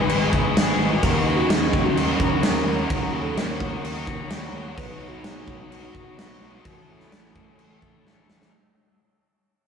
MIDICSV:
0, 0, Header, 1, 7, 480
1, 0, Start_track
1, 0, Tempo, 467654
1, 1054, Time_signature, 4, 2, 24, 8
1, 9928, End_track
2, 0, Start_track
2, 0, Title_t, "Ambient pad"
2, 0, Program_c, 0, 92
2, 0, Note_on_c, 0, 71, 87
2, 0, Note_on_c, 0, 75, 84
2, 0, Note_on_c, 0, 80, 80
2, 0, Note_on_c, 0, 85, 96
2, 1008, Note_off_c, 0, 71, 0
2, 1008, Note_off_c, 0, 75, 0
2, 1012, Note_off_c, 0, 80, 0
2, 1033, Note_off_c, 0, 85, 0
2, 1040, Note_on_c, 0, 73, 90
2, 1045, Note_on_c, 0, 87, 99
2, 1046, Note_on_c, 0, 78, 80
2, 1048, Note_on_c, 0, 82, 82
2, 4854, Note_off_c, 0, 87, 0
2, 4855, Note_off_c, 0, 82, 0
2, 4870, Note_on_c, 0, 87, 94
2, 4883, Note_on_c, 0, 83, 79
2, 6772, Note_off_c, 0, 78, 0
2, 6785, Note_off_c, 0, 87, 0
2, 6791, Note_off_c, 0, 83, 0
2, 6816, Note_on_c, 0, 76, 79
2, 6816, Note_on_c, 0, 88, 97
2, 6819, Note_on_c, 0, 81, 74
2, 8689, Note_off_c, 0, 73, 0
2, 8716, Note_off_c, 0, 88, 0
2, 8717, Note_off_c, 0, 76, 0
2, 8718, Note_off_c, 0, 81, 0
2, 9928, End_track
3, 0, Start_track
3, 0, Title_t, "Soft synth lead"
3, 0, Program_c, 1, 80
3, 1049, Note_on_c, 1, 70, 118
3, 1395, Note_on_c, 1, 66, 102
3, 1411, Note_off_c, 1, 70, 0
3, 1571, Note_on_c, 1, 68, 109
3, 1586, Note_off_c, 1, 66, 0
3, 1885, Note_on_c, 1, 66, 104
3, 1900, Note_off_c, 1, 68, 0
3, 2054, Note_on_c, 1, 70, 123
3, 2070, Note_off_c, 1, 66, 0
3, 2755, Note_off_c, 1, 70, 0
3, 2764, Note_on_c, 1, 70, 110
3, 3311, Note_on_c, 1, 69, 105
3, 3326, Note_off_c, 1, 70, 0
3, 3480, Note_on_c, 1, 70, 104
3, 3495, Note_off_c, 1, 69, 0
3, 4669, Note_off_c, 1, 70, 0
3, 4898, Note_on_c, 1, 71, 123
3, 5212, Note_on_c, 1, 66, 104
3, 5227, Note_off_c, 1, 71, 0
3, 5370, Note_on_c, 1, 68, 104
3, 5385, Note_off_c, 1, 66, 0
3, 5637, Note_on_c, 1, 66, 106
3, 5652, Note_off_c, 1, 68, 0
3, 8267, Note_off_c, 1, 66, 0
3, 9928, End_track
4, 0, Start_track
4, 0, Title_t, "Clean electric guitar"
4, 0, Program_c, 2, 27
4, 0, Note_on_c, 2, 44, 72
4, 0, Note_on_c, 2, 51, 76
4, 0, Note_on_c, 2, 56, 71
4, 0, Note_on_c, 2, 59, 85
4, 0, Note_on_c, 2, 63, 87
4, 0, Note_on_c, 2, 68, 75
4, 1033, Note_off_c, 2, 51, 0
4, 1045, Note_on_c, 2, 51, 78
4, 1050, Note_off_c, 2, 44, 0
4, 1050, Note_off_c, 2, 56, 0
4, 1051, Note_off_c, 2, 59, 0
4, 1054, Note_on_c, 2, 54, 75
4, 1055, Note_on_c, 2, 61, 78
4, 1064, Note_off_c, 2, 63, 0
4, 1067, Note_off_c, 2, 68, 0
4, 1068, Note_on_c, 2, 63, 83
4, 1074, Note_on_c, 2, 70, 77
4, 4877, Note_off_c, 2, 54, 0
4, 4880, Note_off_c, 2, 63, 0
4, 4881, Note_on_c, 2, 59, 73
4, 4888, Note_off_c, 2, 61, 0
4, 4892, Note_on_c, 2, 63, 77
4, 4893, Note_off_c, 2, 51, 0
4, 4906, Note_on_c, 2, 66, 80
4, 4907, Note_off_c, 2, 70, 0
4, 4914, Note_on_c, 2, 73, 86
4, 6810, Note_off_c, 2, 59, 0
4, 6815, Note_off_c, 2, 63, 0
4, 6816, Note_on_c, 2, 57, 79
4, 6822, Note_off_c, 2, 66, 0
4, 6826, Note_on_c, 2, 64, 80
4, 6834, Note_on_c, 2, 69, 86
4, 6843, Note_off_c, 2, 73, 0
4, 6847, Note_on_c, 2, 73, 86
4, 8736, Note_off_c, 2, 57, 0
4, 8741, Note_off_c, 2, 64, 0
4, 8745, Note_off_c, 2, 69, 0
4, 8751, Note_off_c, 2, 73, 0
4, 9928, End_track
5, 0, Start_track
5, 0, Title_t, "Overdriven electric guitar"
5, 0, Program_c, 3, 29
5, 0, Note_on_c, 3, 63, 92
5, 0, Note_on_c, 3, 68, 95
5, 83, Note_on_c, 3, 44, 103
5, 94, Note_on_c, 3, 51, 101
5, 98, Note_on_c, 3, 59, 108
5, 99, Note_on_c, 3, 56, 99
5, 104, Note_off_c, 3, 68, 0
5, 107, Note_off_c, 3, 63, 0
5, 111, Note_on_c, 3, 63, 110
5, 116, Note_on_c, 3, 68, 113
5, 295, Note_off_c, 3, 68, 0
5, 308, Note_on_c, 3, 68, 81
5, 315, Note_off_c, 3, 59, 0
5, 321, Note_off_c, 3, 63, 0
5, 326, Note_on_c, 3, 63, 76
5, 327, Note_on_c, 3, 59, 70
5, 329, Note_off_c, 3, 56, 0
5, 341, Note_on_c, 3, 56, 58
5, 551, Note_off_c, 3, 56, 0
5, 564, Note_off_c, 3, 59, 0
5, 564, Note_on_c, 3, 56, 78
5, 569, Note_off_c, 3, 44, 0
5, 574, Note_off_c, 3, 51, 0
5, 576, Note_on_c, 3, 59, 82
5, 578, Note_off_c, 3, 63, 0
5, 583, Note_on_c, 3, 63, 84
5, 585, Note_off_c, 3, 68, 0
5, 597, Note_on_c, 3, 68, 90
5, 1034, Note_off_c, 3, 56, 0
5, 1041, Note_off_c, 3, 59, 0
5, 1051, Note_off_c, 3, 68, 0
5, 1052, Note_on_c, 3, 51, 88
5, 1071, Note_off_c, 3, 63, 0
5, 1072, Note_on_c, 3, 58, 106
5, 1075, Note_on_c, 3, 63, 93
5, 1088, Note_on_c, 3, 66, 108
5, 1514, Note_off_c, 3, 51, 0
5, 1518, Note_on_c, 3, 51, 73
5, 1525, Note_off_c, 3, 58, 0
5, 1529, Note_on_c, 3, 58, 81
5, 1540, Note_off_c, 3, 63, 0
5, 1544, Note_on_c, 3, 63, 81
5, 1545, Note_off_c, 3, 66, 0
5, 1549, Note_on_c, 3, 66, 82
5, 1993, Note_off_c, 3, 51, 0
5, 2003, Note_off_c, 3, 58, 0
5, 2006, Note_on_c, 3, 51, 100
5, 2015, Note_on_c, 3, 58, 111
5, 2022, Note_off_c, 3, 63, 0
5, 2026, Note_on_c, 3, 63, 102
5, 2029, Note_off_c, 3, 66, 0
5, 2033, Note_on_c, 3, 66, 118
5, 2243, Note_off_c, 3, 66, 0
5, 2247, Note_on_c, 3, 66, 79
5, 2261, Note_off_c, 3, 63, 0
5, 2265, Note_on_c, 3, 63, 78
5, 2271, Note_off_c, 3, 58, 0
5, 2284, Note_on_c, 3, 58, 60
5, 2470, Note_off_c, 3, 51, 0
5, 2479, Note_off_c, 3, 58, 0
5, 2483, Note_on_c, 3, 51, 78
5, 2491, Note_on_c, 3, 58, 92
5, 2500, Note_off_c, 3, 63, 0
5, 2504, Note_on_c, 3, 63, 98
5, 2513, Note_off_c, 3, 66, 0
5, 2517, Note_on_c, 3, 66, 91
5, 2951, Note_off_c, 3, 51, 0
5, 2963, Note_on_c, 3, 51, 94
5, 2965, Note_off_c, 3, 58, 0
5, 2977, Note_off_c, 3, 63, 0
5, 2977, Note_on_c, 3, 58, 108
5, 2981, Note_on_c, 3, 63, 96
5, 2987, Note_off_c, 3, 66, 0
5, 2991, Note_on_c, 3, 66, 102
5, 3433, Note_off_c, 3, 51, 0
5, 3445, Note_on_c, 3, 51, 87
5, 3451, Note_off_c, 3, 58, 0
5, 3464, Note_on_c, 3, 58, 88
5, 3467, Note_off_c, 3, 63, 0
5, 3471, Note_on_c, 3, 63, 84
5, 3477, Note_off_c, 3, 66, 0
5, 3481, Note_on_c, 3, 66, 90
5, 3915, Note_off_c, 3, 51, 0
5, 3926, Note_off_c, 3, 58, 0
5, 3927, Note_on_c, 3, 51, 93
5, 3939, Note_on_c, 3, 58, 114
5, 3941, Note_off_c, 3, 63, 0
5, 3950, Note_off_c, 3, 66, 0
5, 3953, Note_on_c, 3, 63, 109
5, 3962, Note_on_c, 3, 66, 111
5, 4151, Note_off_c, 3, 66, 0
5, 4164, Note_on_c, 3, 66, 78
5, 4165, Note_off_c, 3, 63, 0
5, 4178, Note_on_c, 3, 63, 65
5, 4180, Note_off_c, 3, 58, 0
5, 4192, Note_on_c, 3, 58, 61
5, 4389, Note_off_c, 3, 51, 0
5, 4397, Note_off_c, 3, 58, 0
5, 4402, Note_on_c, 3, 51, 90
5, 4409, Note_on_c, 3, 58, 91
5, 4410, Note_off_c, 3, 63, 0
5, 4423, Note_off_c, 3, 66, 0
5, 4423, Note_on_c, 3, 63, 85
5, 4435, Note_on_c, 3, 66, 91
5, 4875, Note_off_c, 3, 51, 0
5, 4879, Note_off_c, 3, 58, 0
5, 4886, Note_off_c, 3, 63, 0
5, 4892, Note_off_c, 3, 66, 0
5, 4893, Note_on_c, 3, 47, 100
5, 4907, Note_on_c, 3, 54, 107
5, 4910, Note_on_c, 3, 59, 109
5, 4919, Note_on_c, 3, 63, 103
5, 4929, Note_on_c, 3, 66, 109
5, 5347, Note_off_c, 3, 54, 0
5, 5360, Note_on_c, 3, 54, 88
5, 5362, Note_off_c, 3, 59, 0
5, 5370, Note_off_c, 3, 63, 0
5, 5374, Note_on_c, 3, 59, 78
5, 5375, Note_off_c, 3, 66, 0
5, 5383, Note_on_c, 3, 63, 87
5, 5387, Note_on_c, 3, 66, 100
5, 5615, Note_off_c, 3, 47, 0
5, 5844, Note_off_c, 3, 54, 0
5, 5847, Note_off_c, 3, 59, 0
5, 5847, Note_on_c, 3, 47, 105
5, 5856, Note_on_c, 3, 54, 108
5, 5859, Note_on_c, 3, 59, 103
5, 5861, Note_off_c, 3, 63, 0
5, 5868, Note_off_c, 3, 66, 0
5, 5873, Note_on_c, 3, 63, 104
5, 5880, Note_on_c, 3, 66, 118
5, 6072, Note_off_c, 3, 66, 0
5, 6084, Note_on_c, 3, 66, 76
5, 6093, Note_off_c, 3, 63, 0
5, 6105, Note_on_c, 3, 63, 71
5, 6106, Note_off_c, 3, 59, 0
5, 6119, Note_on_c, 3, 59, 59
5, 6319, Note_off_c, 3, 54, 0
5, 6322, Note_off_c, 3, 59, 0
5, 6331, Note_on_c, 3, 54, 83
5, 6332, Note_off_c, 3, 47, 0
5, 6334, Note_on_c, 3, 59, 86
5, 6340, Note_off_c, 3, 63, 0
5, 6348, Note_off_c, 3, 66, 0
5, 6353, Note_on_c, 3, 63, 88
5, 6361, Note_on_c, 3, 66, 89
5, 6800, Note_off_c, 3, 54, 0
5, 6801, Note_off_c, 3, 59, 0
5, 6811, Note_off_c, 3, 63, 0
5, 6815, Note_off_c, 3, 66, 0
5, 6818, Note_on_c, 3, 45, 98
5, 6822, Note_on_c, 3, 52, 102
5, 6841, Note_on_c, 3, 57, 99
5, 6842, Note_on_c, 3, 61, 100
5, 6848, Note_on_c, 3, 69, 120
5, 7280, Note_off_c, 3, 52, 0
5, 7293, Note_off_c, 3, 57, 0
5, 7293, Note_on_c, 3, 52, 88
5, 7305, Note_on_c, 3, 57, 82
5, 7312, Note_off_c, 3, 61, 0
5, 7315, Note_off_c, 3, 69, 0
5, 7324, Note_on_c, 3, 61, 88
5, 7327, Note_on_c, 3, 69, 96
5, 7538, Note_off_c, 3, 45, 0
5, 7761, Note_on_c, 3, 45, 99
5, 7764, Note_off_c, 3, 52, 0
5, 7772, Note_off_c, 3, 57, 0
5, 7776, Note_on_c, 3, 52, 106
5, 7779, Note_off_c, 3, 61, 0
5, 7785, Note_on_c, 3, 57, 108
5, 7790, Note_off_c, 3, 69, 0
5, 7792, Note_on_c, 3, 61, 101
5, 7803, Note_on_c, 3, 69, 115
5, 8010, Note_off_c, 3, 69, 0
5, 8022, Note_on_c, 3, 69, 74
5, 8026, Note_off_c, 3, 61, 0
5, 8038, Note_on_c, 3, 61, 66
5, 8044, Note_off_c, 3, 57, 0
5, 8056, Note_on_c, 3, 57, 58
5, 8246, Note_off_c, 3, 52, 0
5, 8249, Note_off_c, 3, 45, 0
5, 8258, Note_on_c, 3, 52, 83
5, 8261, Note_off_c, 3, 57, 0
5, 8273, Note_on_c, 3, 57, 87
5, 8276, Note_off_c, 3, 61, 0
5, 8282, Note_off_c, 3, 69, 0
5, 8288, Note_on_c, 3, 61, 86
5, 8294, Note_on_c, 3, 69, 90
5, 8723, Note_off_c, 3, 52, 0
5, 8730, Note_off_c, 3, 57, 0
5, 8738, Note_off_c, 3, 61, 0
5, 8741, Note_off_c, 3, 69, 0
5, 9928, End_track
6, 0, Start_track
6, 0, Title_t, "Fingered electric bass"
6, 0, Program_c, 4, 33
6, 86, Note_on_c, 4, 32, 98
6, 485, Note_off_c, 4, 32, 0
6, 566, Note_on_c, 4, 32, 94
6, 767, Note_off_c, 4, 32, 0
6, 791, Note_on_c, 4, 32, 93
6, 998, Note_off_c, 4, 32, 0
6, 1053, Note_on_c, 4, 39, 98
6, 1251, Note_off_c, 4, 39, 0
6, 1273, Note_on_c, 4, 39, 90
6, 1479, Note_off_c, 4, 39, 0
6, 1523, Note_on_c, 4, 39, 97
6, 1725, Note_off_c, 4, 39, 0
6, 1779, Note_on_c, 4, 39, 91
6, 1975, Note_off_c, 4, 39, 0
6, 1988, Note_on_c, 4, 39, 92
6, 2197, Note_off_c, 4, 39, 0
6, 2253, Note_on_c, 4, 39, 87
6, 2451, Note_off_c, 4, 39, 0
6, 2466, Note_on_c, 4, 39, 97
6, 2676, Note_off_c, 4, 39, 0
6, 2715, Note_on_c, 4, 39, 94
6, 2921, Note_off_c, 4, 39, 0
6, 2975, Note_on_c, 4, 37, 98
6, 3173, Note_off_c, 4, 37, 0
6, 3190, Note_on_c, 4, 39, 93
6, 3398, Note_off_c, 4, 39, 0
6, 3437, Note_on_c, 4, 39, 103
6, 3840, Note_off_c, 4, 39, 0
6, 3922, Note_on_c, 4, 39, 96
6, 4323, Note_off_c, 4, 39, 0
6, 4396, Note_on_c, 4, 39, 95
6, 4602, Note_off_c, 4, 39, 0
6, 4641, Note_on_c, 4, 39, 95
6, 4845, Note_off_c, 4, 39, 0
6, 4903, Note_on_c, 4, 35, 106
6, 5098, Note_off_c, 4, 35, 0
6, 5113, Note_on_c, 4, 35, 90
6, 5320, Note_off_c, 4, 35, 0
6, 5364, Note_on_c, 4, 35, 100
6, 5567, Note_off_c, 4, 35, 0
6, 5617, Note_on_c, 4, 35, 98
6, 5815, Note_off_c, 4, 35, 0
6, 5834, Note_on_c, 4, 35, 92
6, 6041, Note_off_c, 4, 35, 0
6, 6102, Note_on_c, 4, 35, 82
6, 6298, Note_off_c, 4, 35, 0
6, 6327, Note_on_c, 4, 35, 90
6, 6529, Note_off_c, 4, 35, 0
6, 6569, Note_on_c, 4, 35, 92
6, 6770, Note_off_c, 4, 35, 0
6, 6823, Note_on_c, 4, 33, 96
6, 7018, Note_off_c, 4, 33, 0
6, 7053, Note_on_c, 4, 33, 95
6, 7252, Note_off_c, 4, 33, 0
6, 7292, Note_on_c, 4, 33, 96
6, 7689, Note_off_c, 4, 33, 0
6, 7777, Note_on_c, 4, 33, 88
6, 8172, Note_off_c, 4, 33, 0
6, 8248, Note_on_c, 4, 33, 98
6, 8449, Note_off_c, 4, 33, 0
6, 8477, Note_on_c, 4, 33, 97
6, 8683, Note_off_c, 4, 33, 0
6, 9928, End_track
7, 0, Start_track
7, 0, Title_t, "Drums"
7, 97, Note_on_c, 9, 49, 67
7, 200, Note_off_c, 9, 49, 0
7, 338, Note_on_c, 9, 36, 93
7, 441, Note_off_c, 9, 36, 0
7, 583, Note_on_c, 9, 49, 75
7, 586, Note_on_c, 9, 38, 127
7, 685, Note_off_c, 9, 49, 0
7, 688, Note_off_c, 9, 38, 0
7, 1058, Note_on_c, 9, 36, 112
7, 1059, Note_on_c, 9, 49, 68
7, 1161, Note_off_c, 9, 36, 0
7, 1161, Note_off_c, 9, 49, 0
7, 1539, Note_on_c, 9, 49, 70
7, 1542, Note_on_c, 9, 38, 118
7, 1641, Note_off_c, 9, 49, 0
7, 1644, Note_off_c, 9, 38, 0
7, 1780, Note_on_c, 9, 36, 95
7, 1882, Note_off_c, 9, 36, 0
7, 2025, Note_on_c, 9, 49, 64
7, 2128, Note_off_c, 9, 49, 0
7, 2257, Note_on_c, 9, 36, 96
7, 2360, Note_off_c, 9, 36, 0
7, 2494, Note_on_c, 9, 49, 70
7, 2497, Note_on_c, 9, 38, 127
7, 2596, Note_off_c, 9, 49, 0
7, 2600, Note_off_c, 9, 38, 0
7, 2979, Note_on_c, 9, 36, 118
7, 2980, Note_on_c, 9, 49, 66
7, 3082, Note_off_c, 9, 36, 0
7, 3083, Note_off_c, 9, 49, 0
7, 3463, Note_on_c, 9, 49, 70
7, 3466, Note_on_c, 9, 38, 126
7, 3565, Note_off_c, 9, 49, 0
7, 3568, Note_off_c, 9, 38, 0
7, 3699, Note_on_c, 9, 36, 89
7, 3802, Note_off_c, 9, 36, 0
7, 3947, Note_on_c, 9, 49, 64
7, 4050, Note_off_c, 9, 49, 0
7, 4181, Note_on_c, 9, 36, 88
7, 4283, Note_off_c, 9, 36, 0
7, 4417, Note_on_c, 9, 49, 75
7, 4420, Note_on_c, 9, 38, 127
7, 4520, Note_off_c, 9, 49, 0
7, 4523, Note_off_c, 9, 38, 0
7, 4902, Note_on_c, 9, 36, 120
7, 4907, Note_on_c, 9, 49, 73
7, 5005, Note_off_c, 9, 36, 0
7, 5009, Note_off_c, 9, 49, 0
7, 5379, Note_on_c, 9, 49, 74
7, 5382, Note_on_c, 9, 38, 122
7, 5482, Note_off_c, 9, 49, 0
7, 5485, Note_off_c, 9, 38, 0
7, 5621, Note_on_c, 9, 36, 91
7, 5723, Note_off_c, 9, 36, 0
7, 5870, Note_on_c, 9, 49, 64
7, 5973, Note_off_c, 9, 49, 0
7, 6104, Note_on_c, 9, 36, 89
7, 6207, Note_off_c, 9, 36, 0
7, 6349, Note_on_c, 9, 49, 73
7, 6352, Note_on_c, 9, 38, 123
7, 6451, Note_off_c, 9, 49, 0
7, 6455, Note_off_c, 9, 38, 0
7, 6824, Note_on_c, 9, 49, 70
7, 6829, Note_on_c, 9, 36, 119
7, 6927, Note_off_c, 9, 49, 0
7, 6931, Note_off_c, 9, 36, 0
7, 7186, Note_on_c, 9, 38, 36
7, 7288, Note_off_c, 9, 38, 0
7, 7308, Note_on_c, 9, 49, 68
7, 7311, Note_on_c, 9, 38, 117
7, 7411, Note_off_c, 9, 49, 0
7, 7414, Note_off_c, 9, 38, 0
7, 7550, Note_on_c, 9, 36, 92
7, 7652, Note_off_c, 9, 36, 0
7, 7788, Note_on_c, 9, 49, 64
7, 7891, Note_off_c, 9, 49, 0
7, 8030, Note_on_c, 9, 36, 93
7, 8132, Note_off_c, 9, 36, 0
7, 8281, Note_on_c, 9, 38, 70
7, 8383, Note_off_c, 9, 38, 0
7, 8515, Note_on_c, 9, 38, 101
7, 8618, Note_off_c, 9, 38, 0
7, 8640, Note_on_c, 9, 38, 97
7, 8742, Note_off_c, 9, 38, 0
7, 9928, End_track
0, 0, End_of_file